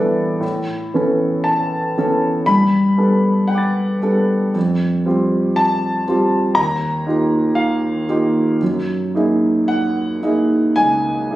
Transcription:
Already playing: G2 E3 B3 D4 A4 D5 E5 G5 B5 D6 A6
0.41 A2
0.94 E3 B3 C#4 A4
1.44 A5
1.97 E3 B3 C#4 A4
2.46 G2 B5
2.98 G3 B3 D4 A4
3.48 F#5 G5 B5
3.55 D6 A6
4.02 G3 B3 D4 A4
4.54 F2
5.06 G3 C4 F4 G4
5.56 A5
6.08 G3 C4 F4 G4
6.55 D#2 A#5
7.07 A#3 D#4 F4 G4
7.55 F5
8.09 A#3 D#4 F4 G4
8.62 F#2
9.15 A#3 D#4 E4 G#4
9.68 F#5
10.23 A#3 D#4 E4 G#4
10.76 C#2 G#5
11.31 A#3 D#4 E4 G#4

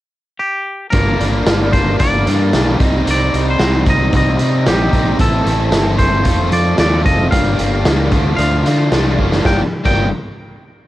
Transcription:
0.39 G4
0.90 G1 G2 D3 G3 A#3 A#4, kick, closed hi-hat
0.95 D4
1.20 G1 G2 D3 G3 A#3 D4, closed hi-hat
1.46 G1 G2 D3 G3 A#3 D4, snare, closed hi-hat
1.73 G2 D3 G3 A#3 D4 C5, kick, closed hi-hat
1.99 G1 G2 D3 G3 A#3 D4 D5, kick, closed hi-hat
2.27 G2 D3 G3 A#3 D4, snare, closed hi-hat
2.52 B1 G2 D3 G3 A#3 D4, snare, closed hi-hat
2.78 C2 C3 G3 C4 D#4, kick, closed hi-hat
3.04 C2 C3 G3 C4 D#4, closed hi-hat
3.11 D5
3.31 C2 C3 G3 C4 D#4, closed hi-hat
3.50 C5
3.57 C2 C3 G3 C4 D#4, snare, closed hi-hat
3.85 C3 G3 C4 D#4, kick, closed hi-hat
3.90 D#5
4.12 C2 C3 G3 C4 D#4, kick, closed hi-hat
4.17 D#5
4.39 C3 G3 C4 D#4, closed hi-hat
4.65 A#1 C3 G3 C4 D#4 G4, snare, closed hi-hat
4.92 A#1 C3 G3 C4 D#4, kick, closed hi-hat
5.19 A1 A2 E3 A3 C4 E4 A4, kick, closed hi-hat
5.44 A1 A2 E3 A3 C4 E4 A4, closed hi-hat
5.70 G1 A2 E3 A3 C4 E4 A4, snare, closed hi-hat
5.96 A2 E3 A3 C4 E4 A4 C5, kick, closed hi-hat
6.22 F1 F3 A3 C4 F4, kick, closed hi-hat
6.27 A4
6.48 F2 F3 A3 C4 F4, closed hi-hat
6.53 A4 D5
6.76 D#2 F3 A3 C4 F4 D5, snare, closed hi-hat
6.81 A4
7.04 F1 F3 A3 C4 F4 A4 D#5, kick, closed hi-hat
7.31 G1 G2 D3 G3 A#3 D4 G4 F5, kick, closed hi-hat
7.58 G1 G2 D3 G3 A#3 D4 G4, closed hi-hat
7.85 C#2 G2 D3 G3 A#3 D4 G4, snare, closed hi-hat
8.11 D2 D3 F3 A3 D4 F4, kick, closed hi-hat
8.36 D2 D3 F3 A3 D4 F5, closed hi-hat
8.41 F4
8.63 D3 F3 A3 D4 F4, snare, closed hi-hat
8.92 C2 D3 F3 A3 D4 F4, snare, closed hi-hat
9.18 F#1 D3 F3 A3 D4 F4, kick
9.32 snare
9.43 G1 G2 D3 G3 A#3 D4 G4 G5, kick, snare
9.84 G1 G2 D3 G3 A#3 D4 G4 G5, kick, crash

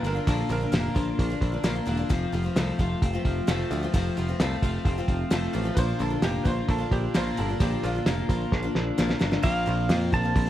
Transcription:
Already playing: A#3 D4 F4
0.03 G1 D3 F3 A#3 D4 F4 A#4, open hi-hat
0.15 A#3 D4 F4
0.27 A#1 A#2 F3 A#3 D4 F4 A4, kick, open hi-hat
0.49 A#1 D3 F3 A#3 D4 F4 A#4, open hi-hat
0.61 A#3 D4 F4
0.72 F1 A#2 F3 A#3 D4 F4, snare, open hi-hat
0.95 A#1 F3 A#3 D4 F4, kick, open hi-hat
1.18 A#1 D4, kick, open hi-hat
1.30 A#3 D4 F4
1.41 A#1 D3, kick, open hi-hat
1.52 A#3 D4 F4
1.64 A#1 A#2 F3 A#3 D4 F4, snare, open hi-hat
1.75 A#3 D4 F4
1.86 E1 D3 F3 A#3 D4 F4, open hi-hat
1.97 A#3 D4 F4
2.09 F1 F2 C3 F3 A3 C4 F4, kick, open hi-hat
2.32 F1 F3 A3 C4 F4, open hi-hat
2.44 F3 A3 C4 F4
2.56 C2 F2 C3 F3 A3 C4 F4, snare, open hi-hat
2.78 F1 F3 A3 C4 F4, kick, open hi-hat
3.02 F1 C4, kick, open hi-hat
3.13 F3 A3 C4 F4
3.25 F1 F3, kick, open hi-hat
3.47 F1 F2 C3 F3 A3 C4 F4, snare, open hi-hat
3.59 snare
3.71 D2 F3 A3 C4 F4, open hi-hat
3.83 F3 A3 C4 F4
3.94 F1 F2 C3 F3 A3 C4 F4, kick, open hi-hat
4.17 F1 F3 A3 C4 F4, open hi-hat
4.28 F3 A3 C4 F4
4.40 C2 F2 C3 F3 A3 C4 F4, snare, open hi-hat
4.62 F1 F3 A3 C4 F4, kick, open hi-hat
4.85 F1 C4, kick, open hi-hat
4.98 F3 A3 C4 F4
5.08 F1 F3, kick, open hi-hat
5.31 F1 F2 C3 F3 A3 C4 F4, snare, open hi-hat
5.42 snare
5.53 A1 F3 A3 C4 F4, open hi-hat
5.64 F3 A3 C4 F4
5.75 A#1 A#2 F3 A#3 D4 F4 B4 C5, kick, open hi-hat
5.99 A#1 D3 F3 A#3 D4 F4 A4, open hi-hat
6.10 A#3 D4 F4
6.22 F1 A#2 F3 A#3 D4 F4 G4, snare, open hi-hat
6.43 A#1 F3 A#3 D4 F4 B4, kick, open hi-hat
6.47 C5
6.68 A#1 D4 A4, kick, open hi-hat
6.78 A#3 D4 F4
6.91 A#1 D3 G4, kick, open hi-hat
7.14 A#1 A#2 F3 A#3 D4 F4 C5, snare, open hi-hat
7.37 G1 D3 F3 A#3 D4 F4 A4, open hi-hat
7.49 A#3 D4 F4
7.60 A#1 A#2 F3 A#3 D4 F4 G4, kick, open hi-hat
7.83 A#1 D3 F3 A#3 D4 F4, open hi-hat
7.96 A#3 D4 F4
8.06 F1 A#2 F3 A#3 D4 F4, snare, open hi-hat
8.29 A#1 F3 A#3 D4 F4, kick, open hi-hat
8.52 A#1 D4, kick, snare
8.63 A#3 D4 F4
8.75 A#1 D3, snare
8.98 A#1 A#2 F3 A#3 D4 F4, snare
9.09 A#3 D4 F4, snare
9.19 G1 D3 F3 A#3 D4 F4, snare
9.32 A#3 D4 F4, snare
9.43 A#1 A#2 F3 A#3 C4 F4 F5, kick, open hi-hat
9.66 A#1 F3 A#3 C4 F4
9.89 F2 A#2 F3 A#3 C4 F4, snare, open hi-hat
10.12 A#1 F3 A#3 C4 F4 A5, kick
10.23 A#3 C4 F4
10.35 A#1, kick, open hi-hat
10.47 F4

